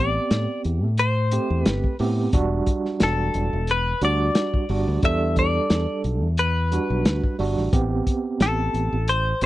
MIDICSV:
0, 0, Header, 1, 6, 480
1, 0, Start_track
1, 0, Key_signature, 1, "minor"
1, 0, Tempo, 674916
1, 1659, Time_signature, 4, 2, 24, 8
1, 6727, End_track
2, 0, Start_track
2, 0, Title_t, "Clean electric guitar"
2, 0, Program_c, 0, 27
2, 0, Note_on_c, 0, 74, 96
2, 436, Note_off_c, 0, 74, 0
2, 707, Note_on_c, 0, 72, 98
2, 1169, Note_off_c, 0, 72, 0
2, 1169, Note_on_c, 0, 71, 98
2, 1394, Note_off_c, 0, 71, 0
2, 2157, Note_on_c, 0, 69, 75
2, 2638, Note_on_c, 0, 71, 86
2, 2642, Note_off_c, 0, 69, 0
2, 2852, Note_off_c, 0, 71, 0
2, 2877, Note_on_c, 0, 74, 93
2, 3560, Note_off_c, 0, 74, 0
2, 3593, Note_on_c, 0, 76, 103
2, 3810, Note_off_c, 0, 76, 0
2, 3832, Note_on_c, 0, 74, 93
2, 4277, Note_off_c, 0, 74, 0
2, 4546, Note_on_c, 0, 71, 101
2, 5234, Note_off_c, 0, 71, 0
2, 5991, Note_on_c, 0, 69, 66
2, 6468, Note_on_c, 0, 72, 83
2, 6479, Note_off_c, 0, 69, 0
2, 6709, Note_off_c, 0, 72, 0
2, 6727, End_track
3, 0, Start_track
3, 0, Title_t, "Tine electric piano"
3, 0, Program_c, 1, 4
3, 0, Note_on_c, 1, 59, 66
3, 0, Note_on_c, 1, 60, 60
3, 0, Note_on_c, 1, 67, 73
3, 617, Note_off_c, 1, 59, 0
3, 619, Note_off_c, 1, 60, 0
3, 619, Note_off_c, 1, 67, 0
3, 939, Note_on_c, 1, 57, 65
3, 942, Note_on_c, 1, 60, 62
3, 946, Note_on_c, 1, 67, 75
3, 1377, Note_off_c, 1, 57, 0
3, 1378, Note_off_c, 1, 60, 0
3, 1380, Note_off_c, 1, 67, 0
3, 1420, Note_on_c, 1, 59, 78
3, 1422, Note_on_c, 1, 60, 67
3, 1425, Note_on_c, 1, 67, 86
3, 1638, Note_off_c, 1, 59, 0
3, 1639, Note_off_c, 1, 60, 0
3, 1641, Note_off_c, 1, 67, 0
3, 1661, Note_on_c, 1, 62, 77
3, 1662, Note_on_c, 1, 55, 81
3, 1667, Note_on_c, 1, 66, 89
3, 2536, Note_off_c, 1, 62, 0
3, 2537, Note_off_c, 1, 55, 0
3, 2539, Note_off_c, 1, 66, 0
3, 2859, Note_on_c, 1, 55, 69
3, 2862, Note_on_c, 1, 62, 61
3, 2864, Note_on_c, 1, 66, 80
3, 3297, Note_off_c, 1, 55, 0
3, 3299, Note_off_c, 1, 62, 0
3, 3300, Note_off_c, 1, 66, 0
3, 3339, Note_on_c, 1, 55, 65
3, 3342, Note_on_c, 1, 62, 60
3, 3346, Note_on_c, 1, 66, 71
3, 3558, Note_off_c, 1, 55, 0
3, 3560, Note_off_c, 1, 62, 0
3, 3562, Note_off_c, 1, 66, 0
3, 3580, Note_on_c, 1, 55, 69
3, 3582, Note_on_c, 1, 62, 62
3, 3588, Note_on_c, 1, 69, 75
3, 4456, Note_off_c, 1, 55, 0
3, 4457, Note_off_c, 1, 62, 0
3, 4460, Note_off_c, 1, 69, 0
3, 4780, Note_on_c, 1, 55, 68
3, 4783, Note_on_c, 1, 62, 63
3, 4786, Note_on_c, 1, 66, 71
3, 5218, Note_off_c, 1, 55, 0
3, 5219, Note_off_c, 1, 62, 0
3, 5221, Note_off_c, 1, 66, 0
3, 5256, Note_on_c, 1, 55, 74
3, 5262, Note_on_c, 1, 62, 67
3, 5263, Note_on_c, 1, 66, 82
3, 5477, Note_off_c, 1, 55, 0
3, 5480, Note_off_c, 1, 62, 0
3, 5480, Note_off_c, 1, 66, 0
3, 5496, Note_on_c, 1, 59, 80
3, 5498, Note_on_c, 1, 60, 73
3, 5501, Note_on_c, 1, 67, 83
3, 6374, Note_off_c, 1, 59, 0
3, 6375, Note_off_c, 1, 60, 0
3, 6376, Note_off_c, 1, 67, 0
3, 6701, Note_on_c, 1, 59, 63
3, 6702, Note_on_c, 1, 60, 60
3, 6705, Note_on_c, 1, 67, 75
3, 6727, Note_off_c, 1, 59, 0
3, 6727, Note_off_c, 1, 60, 0
3, 6727, Note_off_c, 1, 67, 0
3, 6727, End_track
4, 0, Start_track
4, 0, Title_t, "Fingered electric bass"
4, 0, Program_c, 2, 33
4, 0, Note_on_c, 2, 33, 86
4, 125, Note_off_c, 2, 33, 0
4, 220, Note_on_c, 2, 45, 87
4, 324, Note_off_c, 2, 45, 0
4, 462, Note_on_c, 2, 40, 81
4, 593, Note_off_c, 2, 40, 0
4, 593, Note_on_c, 2, 45, 80
4, 978, Note_off_c, 2, 45, 0
4, 1069, Note_on_c, 2, 40, 82
4, 1157, Note_off_c, 2, 40, 0
4, 1180, Note_on_c, 2, 31, 88
4, 1284, Note_off_c, 2, 31, 0
4, 1421, Note_on_c, 2, 45, 78
4, 1614, Note_off_c, 2, 45, 0
4, 1658, Note_on_c, 2, 28, 95
4, 1852, Note_off_c, 2, 28, 0
4, 2145, Note_on_c, 2, 28, 94
4, 2336, Note_off_c, 2, 28, 0
4, 2381, Note_on_c, 2, 28, 86
4, 2485, Note_off_c, 2, 28, 0
4, 2510, Note_on_c, 2, 28, 75
4, 2792, Note_off_c, 2, 28, 0
4, 2855, Note_on_c, 2, 38, 89
4, 3050, Note_off_c, 2, 38, 0
4, 3337, Note_on_c, 2, 31, 81
4, 3443, Note_off_c, 2, 31, 0
4, 3468, Note_on_c, 2, 38, 89
4, 3557, Note_off_c, 2, 38, 0
4, 3577, Note_on_c, 2, 40, 87
4, 3965, Note_off_c, 2, 40, 0
4, 4057, Note_on_c, 2, 40, 87
4, 4163, Note_off_c, 2, 40, 0
4, 4298, Note_on_c, 2, 35, 79
4, 4427, Note_off_c, 2, 35, 0
4, 4427, Note_on_c, 2, 40, 74
4, 4815, Note_off_c, 2, 40, 0
4, 4909, Note_on_c, 2, 35, 80
4, 4998, Note_off_c, 2, 35, 0
4, 5015, Note_on_c, 2, 38, 83
4, 5122, Note_off_c, 2, 38, 0
4, 5258, Note_on_c, 2, 31, 74
4, 5376, Note_off_c, 2, 31, 0
4, 5386, Note_on_c, 2, 33, 71
4, 5486, Note_off_c, 2, 33, 0
4, 5495, Note_on_c, 2, 33, 95
4, 5691, Note_off_c, 2, 33, 0
4, 5976, Note_on_c, 2, 33, 97
4, 6171, Note_off_c, 2, 33, 0
4, 6216, Note_on_c, 2, 33, 76
4, 6322, Note_off_c, 2, 33, 0
4, 6348, Note_on_c, 2, 33, 78
4, 6631, Note_off_c, 2, 33, 0
4, 6697, Note_on_c, 2, 31, 91
4, 6727, Note_off_c, 2, 31, 0
4, 6727, End_track
5, 0, Start_track
5, 0, Title_t, "Muted fingered electric bass strokes"
5, 3227, Note_on_c, 9, 29, 39
5, 3298, Note_off_c, 9, 29, 0
5, 6727, End_track
6, 0, Start_track
6, 0, Title_t, "Drums"
6, 218, Note_on_c, 9, 42, 78
6, 221, Note_on_c, 9, 38, 101
6, 289, Note_off_c, 9, 42, 0
6, 292, Note_off_c, 9, 38, 0
6, 458, Note_on_c, 9, 42, 57
6, 529, Note_off_c, 9, 42, 0
6, 693, Note_on_c, 9, 42, 78
6, 765, Note_off_c, 9, 42, 0
6, 934, Note_on_c, 9, 42, 62
6, 1005, Note_off_c, 9, 42, 0
6, 1177, Note_on_c, 9, 42, 81
6, 1180, Note_on_c, 9, 38, 100
6, 1248, Note_off_c, 9, 42, 0
6, 1251, Note_off_c, 9, 38, 0
6, 1307, Note_on_c, 9, 36, 76
6, 1378, Note_off_c, 9, 36, 0
6, 1416, Note_on_c, 9, 46, 76
6, 1487, Note_off_c, 9, 46, 0
6, 1655, Note_on_c, 9, 42, 80
6, 1658, Note_on_c, 9, 36, 103
6, 1726, Note_off_c, 9, 42, 0
6, 1729, Note_off_c, 9, 36, 0
6, 1895, Note_on_c, 9, 42, 58
6, 1897, Note_on_c, 9, 36, 68
6, 1966, Note_off_c, 9, 42, 0
6, 1969, Note_off_c, 9, 36, 0
6, 2029, Note_on_c, 9, 38, 32
6, 2100, Note_off_c, 9, 38, 0
6, 2133, Note_on_c, 9, 42, 79
6, 2136, Note_on_c, 9, 38, 106
6, 2204, Note_off_c, 9, 42, 0
6, 2207, Note_off_c, 9, 38, 0
6, 2374, Note_on_c, 9, 42, 56
6, 2445, Note_off_c, 9, 42, 0
6, 2612, Note_on_c, 9, 42, 74
6, 2684, Note_off_c, 9, 42, 0
6, 2855, Note_on_c, 9, 42, 57
6, 2926, Note_off_c, 9, 42, 0
6, 3093, Note_on_c, 9, 42, 75
6, 3096, Note_on_c, 9, 38, 101
6, 3164, Note_off_c, 9, 42, 0
6, 3167, Note_off_c, 9, 38, 0
6, 3226, Note_on_c, 9, 36, 78
6, 3297, Note_off_c, 9, 36, 0
6, 3335, Note_on_c, 9, 46, 73
6, 3407, Note_off_c, 9, 46, 0
6, 3574, Note_on_c, 9, 42, 70
6, 3577, Note_on_c, 9, 36, 100
6, 3645, Note_off_c, 9, 42, 0
6, 3648, Note_off_c, 9, 36, 0
6, 3813, Note_on_c, 9, 42, 54
6, 3816, Note_on_c, 9, 36, 71
6, 3884, Note_off_c, 9, 42, 0
6, 3887, Note_off_c, 9, 36, 0
6, 4053, Note_on_c, 9, 42, 74
6, 4056, Note_on_c, 9, 38, 107
6, 4124, Note_off_c, 9, 42, 0
6, 4127, Note_off_c, 9, 38, 0
6, 4297, Note_on_c, 9, 42, 55
6, 4368, Note_off_c, 9, 42, 0
6, 4533, Note_on_c, 9, 42, 75
6, 4605, Note_off_c, 9, 42, 0
6, 4778, Note_on_c, 9, 42, 62
6, 4849, Note_off_c, 9, 42, 0
6, 5016, Note_on_c, 9, 42, 80
6, 5019, Note_on_c, 9, 38, 106
6, 5087, Note_off_c, 9, 42, 0
6, 5090, Note_off_c, 9, 38, 0
6, 5146, Note_on_c, 9, 36, 79
6, 5217, Note_off_c, 9, 36, 0
6, 5256, Note_on_c, 9, 46, 75
6, 5327, Note_off_c, 9, 46, 0
6, 5389, Note_on_c, 9, 38, 32
6, 5460, Note_off_c, 9, 38, 0
6, 5496, Note_on_c, 9, 36, 99
6, 5498, Note_on_c, 9, 42, 83
6, 5568, Note_off_c, 9, 36, 0
6, 5569, Note_off_c, 9, 42, 0
6, 5737, Note_on_c, 9, 36, 67
6, 5738, Note_on_c, 9, 42, 59
6, 5808, Note_off_c, 9, 36, 0
6, 5809, Note_off_c, 9, 42, 0
6, 5976, Note_on_c, 9, 42, 77
6, 5979, Note_on_c, 9, 38, 99
6, 6047, Note_off_c, 9, 42, 0
6, 6050, Note_off_c, 9, 38, 0
6, 6219, Note_on_c, 9, 42, 59
6, 6290, Note_off_c, 9, 42, 0
6, 6455, Note_on_c, 9, 42, 78
6, 6526, Note_off_c, 9, 42, 0
6, 6694, Note_on_c, 9, 42, 58
6, 6727, Note_off_c, 9, 42, 0
6, 6727, End_track
0, 0, End_of_file